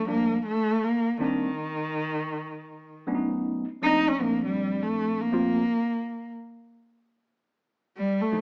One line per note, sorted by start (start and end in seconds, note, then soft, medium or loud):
0.07 0.36 F3 medium
0.07 0.37 G3 medium
0.07 0.37 A3 medium
0.07 0.37 A#3 medium
0.07 0.43 A#3 medium
0.07 0.37 D4 medium
0.47 0.85 A3 loud
0.84 1.20 A#3 medium
1.19 1.49 D#3 medium
1.19 3.04 D#3 medium
1.19 1.49 G3 medium
1.19 1.49 A#3 medium
1.19 1.49 C4 medium
1.19 1.50 D4 medium
3.07 3.64 F#3 medium
3.07 3.64 A3 medium
3.07 3.64 B3 medium
3.07 3.64 C#4 medium
3.07 3.16 D4 medium
3.15 3.68 D#4 medium
3.82 4.11 F3 medium
3.82 4.12 A3 medium
3.82 4.12 A#3 medium
3.82 4.12 C4 medium
3.82 4.12 D4 medium
3.82 4.10 D#4 loud
4.08 4.23 C#4 medium
4.20 5.27 A#2 soft
4.20 5.27 F3 medium
4.20 5.27 A3 medium
4.20 4.44 A#3 medium
4.20 5.27 C4 medium
4.20 5.28 D4 medium
4.46 4.84 G3 medium
4.82 5.22 A3 medium
5.21 6.32 A#3 medium
5.32 5.62 F3 medium
5.32 5.62 A3 medium
5.32 5.62 A#3 medium
5.32 5.62 C4 medium
5.32 5.62 F4 medium
7.98 8.23 G3 medium
8.21 8.41 A3 medium
8.32 8.41 C#3 medium
8.32 8.41 F3 medium
8.32 8.41 F#3 soft
8.32 8.41 A#3 medium
8.32 8.41 D#4 medium